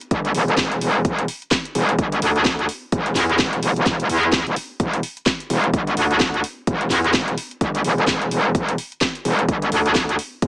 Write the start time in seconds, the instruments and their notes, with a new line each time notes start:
0.01 closed hi-hat
0.11 wobble bass G1, kick, closed hi-hat
0.25 closed hi-hat
0.35 wobble bass E1, open hi-hat
0.48 closed hi-hat
0.57 wobble bass E1, kick, snare, closed hi-hat
0.72 closed hi-hat
0.81 wobble bass E1, open hi-hat
1.05 wobble bass E1, kick, closed hi-hat
1.19 closed hi-hat
1.28 open hi-hat
1.42 closed hi-hat
1.51 kick, snare, closed hi-hat
1.65 closed hi-hat
1.75 wobble bass E1, open hi-hat
1.89 closed hi-hat
1.99 wobble bass G1, kick, closed hi-hat
2.12 closed hi-hat
2.22 wobble bass D2, open hi-hat
2.36 closed hi-hat
2.45 kick, snare, closed hi-hat
2.59 closed hi-hat
2.69 open hi-hat
2.92 wobble bass E1, kick, closed hi-hat
3.06 closed hi-hat
3.15 wobble bass E2, snare, open hi-hat
3.29 closed hi-hat
3.39 wobble bass E1, kick, snare, closed hi-hat
3.53 closed hi-hat
3.63 wobble bass E1, open hi-hat
3.76 wobble bass E1, closed hi-hat
3.85 kick, snare, closed hi-hat
4.00 closed hi-hat
4.09 wobble bass E2, open hi-hat
4.23 closed hi-hat
4.32 kick, snare, closed hi-hat
4.47 wobble bass E1, closed hi-hat
4.56 open hi-hat
4.80 wobble bass E1, kick, closed hi-hat
4.93 closed hi-hat
5.03 open hi-hat
5.17 closed hi-hat
5.26 kick, snare, closed hi-hat
5.40 closed hi-hat
5.50 wobble bass E1, open hi-hat
5.64 closed hi-hat
5.74 wobble bass G1, kick, closed hi-hat
5.87 closed hi-hat
5.97 wobble bass D2, open hi-hat
6.11 closed hi-hat
6.20 kick, snare, closed hi-hat
6.34 closed hi-hat
6.44 open hi-hat
6.67 wobble bass E1, kick, closed hi-hat
6.81 closed hi-hat
6.90 wobble bass E2, snare, open hi-hat
7.04 closed hi-hat
7.13 wobble bass E1, kick, snare, closed hi-hat
7.28 closed hi-hat
7.38 open hi-hat
7.51 closed hi-hat
7.61 wobble bass G1, kick, closed hi-hat
7.75 closed hi-hat
7.84 wobble bass E1, open hi-hat
7.98 closed hi-hat
8.07 wobble bass E1, kick, snare, closed hi-hat
8.22 closed hi-hat
8.31 wobble bass E1, open hi-hat
8.55 wobble bass E1, kick, closed hi-hat
8.69 closed hi-hat
8.78 open hi-hat
8.92 closed hi-hat
9.01 kick, snare, closed hi-hat
9.15 closed hi-hat
9.25 wobble bass E1, open hi-hat
9.39 closed hi-hat
9.48 wobble bass G1, kick, closed hi-hat
9.62 closed hi-hat
9.72 wobble bass D2, open hi-hat
9.86 closed hi-hat
9.95 kick, snare, closed hi-hat
10.09 closed hi-hat
10.19 open hi-hat
10.42 wobble bass E1, kick, closed hi-hat